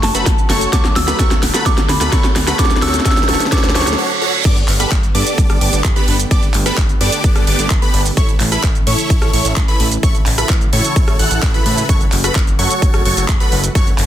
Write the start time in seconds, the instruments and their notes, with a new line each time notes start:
Already playing: analog synth pad C#3 F#3 A3 F#4, grand piano F#3 A3 C#4 A4, riser
0.03 analog synth bass F#1, synth bell A5, snare, open hi-hat
0.14 analog synth bass F#1, grand piano F#3 A3 C#4 A4, supersaw synth F#4 A4 B4, digital synth lead B5, closed hi-hat, shaker
0.26 analog synth bass F#1, kick, snare, closed hi-hat, shaker
0.38 shaker
0.49 analog synth bass F#1, grand piano F#3 A3 C#4 A4, supersaw synth F#4 A4 C#5, digital synth lead C#6, snare, open hi-hat
0.61 closed hi-hat, shaker
0.72 analog synth bass D2, analog synth pad D3, grand piano F#3 A3 C#4 A4, supersaw synth F#4 A4 C#5, digital synth lead C#6, synth bell D6, kick, snare, closed hi-hat, shaker
0.84 snare, shaker
0.96 analog synth bass D2, synth bell E6, snare, open hi-hat
1.07 grand piano F#3 A3 C#4 A4, supersaw synth F#4 A4 B4, digital synth lead B5, snare, closed hi-hat, shaker
1.19 analog synth bass D2, grand piano F#3 A3 C#4 A4, supersaw synth A4, digital synth lead C#6, kick, snare, closed hi-hat, shaker
1.31 snare, closed hi-hat, shaker
1.43 analog synth bass D1, snare, open hi-hat
1.54 grand piano F#3 A3 C#4 A4, supersaw synth F#4 A4 B4, digital synth lead B5, snare, closed hi-hat, shaker
1.65 analog synth bass D2, grand piano F#3 A3 C#4 A4, supersaw synth F#4 C#5, digital synth lead C#6, synth bell D6, kick, snare, closed hi-hat, shaker
1.77 analog synth bass D2, snare, closed hi-hat, shaker
1.89 analog synth bass D2, synth bell B5, snare, open hi-hat
2.00 analog synth bass D2, grand piano F#3 A3 C#4 A4, supersaw synth F#4 A4 B4, digital synth lead B5, snare, closed hi-hat, shaker
2.12 analog synth bass D2, grand piano F#3 A3 C#4 A4, supersaw synth C#5, digital synth lead C#6, kick, snare, closed hi-hat, shaker
2.24 snare, shaker
2.36 analog synth bass D2, snare, open hi-hat
2.47 grand piano F#3 A3 C#4 A4, supersaw synth F#4 A4 B4, digital synth lead B5, snare, closed hi-hat, shaker
2.58 analog synth bass D2, grand piano F#3 A3 C#4 A4, supersaw synth F#4 A4 C#5, digital synth lead C#6, synth bell D6, kick, snare, closed hi-hat, shaker
2.65 snare
2.70 snare, closed hi-hat, shaker
2.76 snare
2.81 analog synth bass D2, grand piano F#3 A3 C#4 A4, supersaw synth F#4 A4 C#5, digital synth lead C#6, synth bell E6, snare, open hi-hat
2.88 snare
2.94 snare, closed hi-hat, shaker
3.00 snare
3.05 analog synth bass D2, grand piano F#3 A3 C#4 A4, supersaw synth F#4 A4 C#5, digital synth lead C#6, kick, snare, closed hi-hat, shaker
3.11 snare
3.17 snare, closed hi-hat, shaker
3.23 snare
3.28 analog synth bass D1, grand piano F#3 A3 C#4 A4, supersaw synth F#4 A4 C#5, digital synth lead C#6, snare, open hi-hat
3.34 snare
3.40 snare, closed hi-hat, shaker
3.46 snare
3.51 analog synth bass D2, grand piano F#3 A3 C#4 A4, supersaw synth F#4 A4 C#5, digital synth lead C#6, synth bell D6, kick, snare, closed hi-hat, reverse cymbal, shaker
3.58 snare
3.64 analog synth bass D2, snare, closed hi-hat, shaker
3.69 snare
3.74 analog synth bass D2, grand piano F#3 A3 C#4 A4, supersaw synth F#4 A4 C#5, digital synth lead C#6, snare, open hi-hat
3.81 snare
3.87 analog synth bass D2, snare, closed hi-hat, shaker
3.93 snare
3.98 supersaw synth F#4 A4 C#5
4.21 supersaw synth F#4 A4 C#5
4.45 analog synth bass G1, analog synth pad D3 A3 B3 G4, supersaw synth B3 D4 G4 A4 D5, digital synth lead D6, kick, closed hi-hat, crash, shaker
4.57 closed hi-hat, shaker
4.68 analog synth bass G1, clap, open hi-hat
4.80 supersaw synth B3 D4 G4 A4 B4, digital synth lead B5, cross-stick, closed hi-hat, shaker
4.91 analog synth bass G1, kick, clap, closed hi-hat, shaker
5.03 closed hi-hat, shaker
5.15 analog synth bass G2, supersaw synth B3 D4 G4 A4 D5, digital synth lead D6, open hi-hat
5.27 closed hi-hat, shaker
5.38 analog synth bass G1, kick, closed hi-hat, shaker
5.50 analog synth bass G1, cross-stick, closed hi-hat, shaker
5.61 analog synth bass G1, supersaw synth B3 D4 G4 A4 D5, digital synth lead D6, open hi-hat
5.73 analog synth bass G1, closed hi-hat, shaker
5.84 analog synth bass G1, kick, clap, closed hi-hat, shaker
5.96 supersaw synth B3 D4 G4 A4 B4, digital synth lead B5, closed hi-hat, shaker
6.08 analog synth bass G1, open hi-hat
6.19 closed hi-hat, shaker
6.31 analog synth bass G1, supersaw synth B3 D4 G4 A4 D5, digital synth lead D6, kick, closed hi-hat, shaker
6.43 closed hi-hat, shaker
6.54 analog synth bass G1, clap, open hi-hat
6.66 supersaw synth B3 D4 G4 A4 B4, digital synth lead B5, cross-stick, closed hi-hat, shaker
6.77 analog synth bass G1, kick, clap, closed hi-hat, shaker
6.89 closed hi-hat, shaker
7.01 analog synth bass G2, supersaw synth B3 D4 G4 A4 D5, digital synth lead D6, open hi-hat
7.12 closed hi-hat, shaker
7.24 analog synth bass G1, kick, closed hi-hat, shaker
7.36 analog synth bass G1, cross-stick, closed hi-hat, shaker
7.47 analog synth bass G1, supersaw synth B3 D4 G4 A4 D5, digital synth lead D6, open hi-hat
7.59 analog synth bass G1, closed hi-hat, shaker
7.70 analog synth bass G1, kick, clap, closed hi-hat, shaker
7.82 supersaw synth B3 D4 G4 A4 B4, digital synth lead B5, closed hi-hat, shaker
7.94 analog synth bass G1, open hi-hat
8.05 open hi-hat, shaker
8.17 analog synth bass A1, analog synth pad C#3 E3 E4, supersaw synth E4 A4 C#5, digital synth lead C#6, kick, closed hi-hat, shaker
8.29 closed hi-hat, shaker
8.40 analog synth bass A1, clap, open hi-hat
8.52 supersaw synth E4 A4 B4, digital synth lead B5, cross-stick, closed hi-hat, shaker
8.63 analog synth bass A1, kick, clap, closed hi-hat, shaker
8.75 closed hi-hat, shaker
8.87 analog synth bass A2, supersaw synth E4 A4 C#5, digital synth lead C#6, open hi-hat
8.99 closed hi-hat, shaker
9.10 analog synth bass A1, kick, closed hi-hat, shaker
9.22 analog synth bass A1, cross-stick, closed hi-hat, shaker
9.33 analog synth bass A1, supersaw synth E4 A4 C#5, digital synth lead C#6, open hi-hat
9.45 analog synth bass A1, closed hi-hat, shaker
9.56 analog synth bass A1, kick, clap, closed hi-hat, shaker
9.68 supersaw synth E4 A4 B4, digital synth lead B5, closed hi-hat, shaker
9.80 analog synth bass A1, open hi-hat
9.91 closed hi-hat, shaker
10.03 analog synth bass A1, supersaw synth E4 A4 C#5, analog synth pad F#4, digital synth lead C#6, kick, closed hi-hat, shaker
10.15 closed hi-hat, shaker
10.26 analog synth bass A1, clap, open hi-hat
10.38 supersaw synth E4 A4 B4, digital synth lead B5, cross-stick, closed hi-hat, shaker
10.49 analog synth bass A1, kick, clap, closed hi-hat, shaker
10.61 closed hi-hat, shaker
10.73 analog synth bass A2, supersaw synth E4 A4 C#5, digital synth lead C#6, open hi-hat
10.84 closed hi-hat, shaker
10.96 analog synth bass A1, kick, closed hi-hat, shaker
11.08 analog synth bass A1, cross-stick, closed hi-hat, shaker
11.19 analog synth bass A1, supersaw synth E4 A4 F#5, digital synth lead F#6, open hi-hat
11.31 analog synth bass A1, closed hi-hat, shaker
11.42 analog synth bass A1, kick, clap, closed hi-hat, shaker
11.54 supersaw synth E4 A4 B4, digital synth lead B5, closed hi-hat, shaker
11.66 analog synth bass A2, supersaw synth E4 A4 B4, digital synth lead B5, open hi-hat
11.77 open hi-hat, shaker
11.89 analog synth bass F#1, analog synth pad F#3 A3 F#4, supersaw synth F#4 A4 C#5, digital synth lead C#6, kick, closed hi-hat, shaker
12.01 closed hi-hat, shaker
12.12 analog synth bass F#1, clap, open hi-hat
12.24 supersaw synth F#4 A4 B4, digital synth lead B5, cross-stick, closed hi-hat, shaker
12.35 analog synth bass F#1, kick, clap, closed hi-hat, shaker
12.47 closed hi-hat, shaker
12.59 analog synth bass F#2, supersaw synth F#4 A4 C#5, digital synth lead C#6, open hi-hat
12.70 closed hi-hat, shaker
12.82 analog synth bass F#1, kick, closed hi-hat, shaker
12.94 analog synth bass F#1, cross-stick, closed hi-hat, shaker
13.05 analog synth bass F#1, supersaw synth F#4 A4 C#5, digital synth lead C#6, open hi-hat
13.17 analog synth bass F#1, closed hi-hat, shaker
13.28 analog synth bass F#1, kick, clap, closed hi-hat, shaker
13.40 supersaw synth F#4 A4 B4, digital synth lead B5, closed hi-hat, shaker
13.52 analog synth bass F#1, open hi-hat
13.64 closed hi-hat, shaker
13.75 analog synth bass F#1, supersaw synth F#4 A4 C#5, digital synth lead C#6, kick, closed hi-hat, shaker
13.87 closed hi-hat, shaker
13.98 analog synth bass F#1, clap, open hi-hat